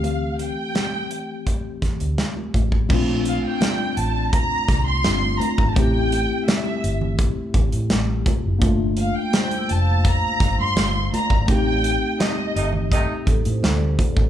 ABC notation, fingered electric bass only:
X:1
M:4/4
L:1/16
Q:1/4=84
K:Bblyd
V:1 name="Fingered electric bass" clef=bass
D,,3 z8 D,, z2 A,,,2 | B,,,3 z3 A,,,2 z2 C,,2 G,,,2 z _A,,, | A,,,3 z3 G,,,3 z A,,, A,, A,,,2 z ^F,,, | G,,,3 z3 F,,,3 z G,,, G,, G,,,2 z _A,,, |
A,,,3 z3 G,,,3 z A,,, A,, D,,2 z A,,, |]